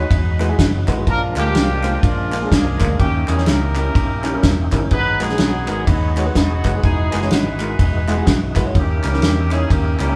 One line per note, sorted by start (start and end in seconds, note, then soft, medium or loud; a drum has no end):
0.00 1.04 F#3 medium
0.00 1.05 G#3 medium
0.00 1.04 B3 medium
0.00 0.84 D#4 medium
0.00 1.03 D#4 medium
0.00 1.03 F#4 medium
0.00 0.84 G#4 medium
0.00 0.89 B4 loud
0.11 0.51 E2 medium
0.11 kick loud
0.11 ride medium
0.39 0.45 G#3 medium
0.39 0.45 D#4 medium
0.39 0.45 E4 medium
0.39 0.45 F#4 medium
0.39 0.45 B4 loud
0.39 clap medium
0.39 ride medium
0.48 0.60 G#3 medium
0.48 0.60 D#4 medium
0.48 0.61 E4 medium
0.48 0.61 F#4 medium
0.48 0.61 G#4 medium
0.59 0.83 F#1 medium
0.59 kick loud
0.59 snare loud
0.59 ride loud
0.87 1.04 G#1 medium
0.87 0.93 G#3 medium
0.87 0.93 D#4 medium
0.87 0.93 E4 medium
0.87 0.93 F#4 medium
0.87 0.93 B4 loud
0.87 kick medium
0.87 clap loud
0.87 ride medium
0.97 1.07 G#3 medium
0.97 1.07 D#4 medium
0.97 1.07 E4 medium
0.97 1.07 F#4 medium
0.97 1.07 B4 medium
1.06 1.32 A#1 loud
1.06 1.80 A#2 medium
1.06 2.95 F3 medium
1.06 2.95 G#3 medium
1.06 2.95 A#3 medium
1.06 2.95 D4 medium
1.06 1.35 D4 medium
1.06 2.00 F4 medium
1.06 2.95 A#4 medium
1.06 1.21 A#4 loud
1.06 kick loud
1.06 ride medium
1.36 1.52 D2 loud
1.36 1.41 G#3 medium
1.36 1.41 A#3 medium
1.36 1.41 D4 medium
1.36 2.03 D4 medium
1.36 1.42 F4 medium
1.36 2.00 G4 loud
1.36 1.42 A#4 medium
1.36 clap loud
1.36 ride medium
1.45 1.57 G#3 medium
1.45 1.57 A#3 medium
1.45 1.57 D4 medium
1.45 1.57 F4 medium
1.45 1.57 G4 medium
1.55 1.96 C2 medium
1.55 snare loud
1.55 ride medium
1.83 1.95 G#3 medium
1.83 1.95 A#3 medium
1.83 1.95 D4 medium
1.83 1.95 F4 medium
1.83 1.95 C5 medium
1.83 clap medium
1.83 ride medium
2.03 2.44 A#1 loud
2.03 2.96 G#3 medium
2.03 2.51 D4 medium
2.03 2.51 F4 loud
2.03 kick loud
2.03 ride medium
2.32 2.37 G#3 medium
2.32 2.38 A#3 medium
2.32 2.38 D4 medium
2.32 2.38 F4 medium
2.32 2.38 A#4 medium
2.32 clap medium
2.32 ride medium
2.41 2.53 G#3 medium
2.41 2.53 A#3 medium
2.41 2.53 D4 medium
2.41 2.54 F4 medium
2.41 2.54 G#4 medium
2.52 2.76 C2 medium
2.52 2.96 D4 medium
2.52 2.96 F4 medium
2.52 3.00 G#4 loud
2.52 kick loud
2.52 snare loud
2.52 ride medium
2.80 2.97 D2 medium
2.80 2.86 G#3 medium
2.80 2.85 A#3 medium
2.80 2.86 D4 medium
2.80 2.86 F4 medium
2.80 2.86 A#4 medium
2.80 kick loud
2.80 snare soft
2.80 clap loud
2.80 ride medium
2.89 2.99 G#3 medium
2.89 2.99 A#3 medium
2.89 2.99 D4 medium
2.89 2.99 F4 medium
2.89 2.99 A#4 medium
2.99 3.24 D#2 loud
2.99 3.72 D#3 medium
2.99 4.88 A#3 medium
2.99 3.92 A#3 medium
2.99 4.87 C#4 medium
2.99 3.47 C#4 medium
2.99 4.88 D#4 medium
2.99 4.88 E4 medium
2.99 3.06 F#4 medium
2.99 3.27 G4 loud
2.99 kick loud
2.99 ride medium
3.05 4.91 G4 medium
3.28 3.44 E2 loud
3.28 3.34 G3 medium
3.28 3.33 C#4 medium
3.28 3.34 D#4 medium
3.28 3.34 E4 medium
3.28 3.48 G#4 loud
3.28 3.34 A#4 medium
3.28 clap loud
3.28 ride medium
3.37 3.49 G3 medium
3.37 3.49 C#4 medium
3.37 3.49 D#4 medium
3.37 3.49 E4 medium
3.37 3.49 C#5 medium
3.37 snare soft
3.46 3.88 C#2 medium
3.46 4.69 C#4 medium
3.46 4.69 G4 medium
3.46 4.73 A#4 loud
3.46 snare loud
3.46 ride medium
3.76 3.87 G3 medium
3.76 3.87 C#4 medium
3.76 3.87 D#4 medium
3.76 3.87 E4 medium
3.76 3.87 A#4 medium
3.76 clap medium
3.76 ride medium
3.95 4.36 A#1 medium
3.95 kick loud
3.95 ride medium
4.24 4.29 G3 medium
4.24 4.29 C#4 medium
4.24 4.30 D#4 medium
4.24 4.30 E4 medium
4.24 4.30 G4 loud
4.24 clap medium
4.24 ride medium
4.33 4.45 G3 medium
4.33 4.45 C#4 medium
4.33 4.45 D#4 medium
4.33 4.46 E4 medium
4.33 4.46 A#4 medium
4.43 4.68 E1 medium
4.43 kick loud
4.43 snare loud
4.43 ride medium
4.72 4.89 G1 loud
4.72 4.77 G3 medium
4.72 4.78 C#4 medium
4.72 4.78 D#4 medium
4.72 4.78 E4 medium
4.72 4.78 A#4 loud
4.72 kick loud
4.72 clap loud
4.72 ride medium
4.82 4.91 G3 medium
4.82 4.91 C#4 medium
4.82 4.91 D#4 medium
4.82 4.92 E4 medium
4.82 4.92 A#4 medium
4.91 5.16 G#1 loud
4.91 5.65 G#2 medium
4.91 6.80 F#3 medium
4.91 6.79 G#3 medium
4.91 6.79 B3 medium
4.91 6.80 D#4 medium
4.91 5.19 D#4 medium
4.91 5.84 F#4 medium
4.91 6.79 G#4 medium
4.91 5.19 B4 loud
4.91 kick loud
4.91 ride medium
5.20 5.37 A#1 loud
5.20 5.26 G#3 medium
5.20 5.26 B3 medium
5.20 5.85 B3 medium
5.20 5.26 D#4 medium
5.20 5.86 D#4 medium
5.20 5.26 F#4 medium
5.20 5.65 G#4 loud
5.20 5.26 B4 medium
5.20 clap loud
5.20 ride medium
5.29 5.42 G#3 medium
5.29 5.42 B3 medium
5.29 5.42 D#4 medium
5.29 5.42 F#4 medium
5.29 5.42 G#4 medium
5.29 snare soft
5.38 5.64 B1 loud
5.38 snare loud
5.38 ride medium
5.67 5.84 G#1 medium
5.67 5.79 G#3 medium
5.67 5.79 B3 medium
5.67 5.79 D#4 medium
5.67 5.79 F#4 medium
5.67 5.86 G#4 loud
5.67 5.79 A#4 medium
5.67 clap medium
5.67 ride medium
5.87 6.28 D#2 loud
5.87 6.34 B3 medium
5.87 6.34 D#4 medium
5.87 6.34 F#4 medium
5.87 kick loud
5.87 ride medium
6.16 6.22 G#3 medium
6.16 6.22 B3 medium
6.16 6.22 D#4 medium
6.16 6.22 F#4 medium
6.16 6.22 C#5 medium
6.16 clap medium
6.16 ride medium
6.26 6.37 G#3 medium
6.26 6.37 B3 medium
6.26 6.37 D#4 medium
6.26 6.38 F#4 medium
6.26 6.38 B4 medium
6.35 6.60 E1 medium
6.35 6.80 B3 medium
6.35 6.80 D#4 medium
6.35 6.80 F#4 loud
6.35 kick loud
6.35 snare loud
6.35 ride medium
6.64 6.81 F#1 medium
6.64 6.70 G#3 medium
6.64 6.70 B3 medium
6.64 6.70 D#4 medium
6.64 6.70 F#4 medium
6.64 6.70 B4 medium
6.64 kick medium
6.64 clap loud
6.64 ride medium
6.74 6.84 G#3 medium
6.74 6.84 B3 medium
6.74 6.84 D#4 medium
6.74 6.84 F#4 medium
6.74 6.84 G#4 medium
6.83 7.08 E1 loud
6.83 8.71 E3 medium
6.83 7.57 E3 medium
6.83 8.71 G#3 medium
6.83 7.75 B3 medium
6.83 8.71 B3 medium
6.83 8.71 D#4 medium
6.83 7.30 D#4 medium
6.83 8.71 F#4 medium
6.83 7.30 G#4 loud
6.83 kick loud
6.83 ride medium
7.12 7.29 F#1 medium
7.12 7.18 G#3 medium
7.12 7.18 D#4 medium
7.12 7.18 E4 medium
7.12 7.18 F#4 medium
7.12 7.18 B4 medium
7.12 clap loud
7.12 ride medium
7.22 7.33 G#3 medium
7.22 7.34 D#4 medium
7.22 7.34 E4 medium
7.22 7.34 F#4 medium
7.22 7.34 C#5 medium
7.22 snare soft
7.31 7.72 G#1 loud
7.31 8.52 D#4 medium
7.31 8.52 G#4 medium
7.31 8.52 B4 loud
7.31 snare loud
7.31 ride medium
7.60 7.71 G#3 medium
7.60 7.71 D#4 medium
7.60 7.71 E4 medium
7.60 7.71 F#4 medium
7.60 7.72 A#4 medium
7.60 clap medium
7.60 ride medium
7.79 8.20 E1 loud
7.79 kick loud
7.79 ride medium
8.08 8.13 G#3 loud
8.08 8.13 D#4 medium
8.08 8.14 E4 medium
8.08 8.14 F#4 medium
8.08 8.14 G#4 loud
8.08 clap medium
8.08 ride medium
8.17 8.29 G#3 medium
8.17 8.29 D#4 medium
8.17 8.29 E4 medium
8.17 8.29 F#4 medium
8.17 8.29 G#4 medium
8.27 8.68 B1 medium
8.27 kick loud
8.27 snare loud
8.27 ride medium
8.56 8.61 G#3 medium
8.56 8.61 D#4 medium
8.56 8.61 E4 medium
8.56 8.61 F#4 medium
8.56 8.62 B4 loud
8.56 kick loud
8.56 snare soft
8.56 clap loud
8.56 ride medium
8.65 8.75 G#3 medium
8.65 8.75 D#4 medium
8.65 8.75 E4 medium
8.65 8.75 F#4 medium
8.65 8.75 C#5 medium
8.75 8.99 D#2 loud
8.75 9.48 D#3 medium
8.75 10.16 A#3 medium
8.75 9.67 A#3 medium
8.75 10.16 C#4 medium
8.75 9.67 C#4 medium
8.75 10.16 D#4 medium
8.75 10.16 E4 medium
8.75 9.48 G4 loud
8.75 10.16 G4 medium
8.75 kick loud
8.75 ride medium
9.04 9.20 C#2 loud
9.04 9.09 G3 medium
9.04 9.09 C#4 medium
9.04 9.09 D#4 medium
9.04 9.10 E4 medium
9.04 9.10 A#4 medium
9.04 clap loud
9.04 ride medium
9.13 9.25 G3 medium
9.13 9.25 C#4 medium
9.13 9.25 D#4 medium
9.13 9.25 E4 medium
9.13 9.25 A#4 medium
9.13 snare soft
9.22 9.63 E2 medium
9.22 snare loud
9.22 ride medium
9.51 9.62 G3 medium
9.51 9.63 C#4 medium
9.51 9.63 D#4 medium
9.51 9.63 E4 medium
9.51 9.71 G#4 loud
9.51 9.63 C#5 medium
9.51 clap medium
9.51 ride medium
9.70 9.95 D#2 loud
9.70 9.99 A#3 medium
9.70 10.00 C#4 medium
9.70 9.99 G4 medium
9.70 kick loud
9.70 ride medium
9.99 10.16 C#2 medium
9.99 10.05 G3 medium
9.99 10.16 A#3 medium
9.99 10.05 C#4 medium
9.99 10.16 C#4 medium
9.99 10.05 D#4 medium
9.99 10.05 E4 medium
9.99 10.16 G4 loud
9.99 10.05 A#4 medium
9.99 clap medium
9.99 ride medium
10.08 10.16 G3 medium
10.08 10.16 C#4 medium
10.08 10.16 D#4 medium
10.08 10.16 E4 medium
10.08 10.16 A#4 medium